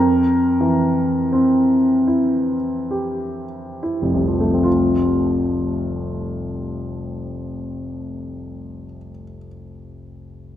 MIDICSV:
0, 0, Header, 1, 2, 480
1, 0, Start_track
1, 0, Key_signature, -1, "major"
1, 0, Tempo, 1388889
1, 456, Tempo, 1578947
1, 936, Tempo, 1754386
1, 1416, Tempo, 1515152
1, 1417, Time_signature, 6, 3, 24, 8
1, 2376, Tempo, 1485149
1, 3308, End_track
2, 0, Start_track
2, 0, Title_t, "Grand piano"
2, 0, Program_c, 0, 0
2, 0, Note_on_c, 0, 41, 52
2, 0, Note_on_c, 0, 70, 61
2, 72, Control_c, 0, 64, 127
2, 210, Note_on_c, 0, 52, 36
2, 452, Note_off_c, 0, 70, 0
2, 458, Note_on_c, 0, 60, 38
2, 593, Note_off_c, 0, 52, 0
2, 685, Note_on_c, 0, 64, 37
2, 834, Note_off_c, 0, 60, 0
2, 938, Note_on_c, 0, 67, 32
2, 1083, Note_off_c, 0, 64, 0
2, 1190, Note_on_c, 0, 64, 31
2, 1243, Note_on_c, 0, 29, 39
2, 1277, Note_on_c, 0, 36, 29
2, 1311, Note_on_c, 0, 53, 28
2, 1332, Note_off_c, 0, 67, 0
2, 1348, Note_on_c, 0, 57, 31
2, 1384, Note_on_c, 0, 60, 29
2, 1406, Note_off_c, 0, 41, 0
2, 1411, Note_on_c, 0, 65, 37
2, 1419, Note_off_c, 0, 64, 0
2, 1424, Control_c, 0, 64, 0
2, 1504, Control_c, 0, 64, 127
2, 2752, Note_off_c, 0, 29, 0
2, 2792, Note_off_c, 0, 36, 0
2, 2833, Note_off_c, 0, 53, 0
2, 2877, Note_off_c, 0, 57, 0
2, 2919, Note_off_c, 0, 60, 0
2, 2951, Note_off_c, 0, 65, 0
2, 3308, End_track
0, 0, End_of_file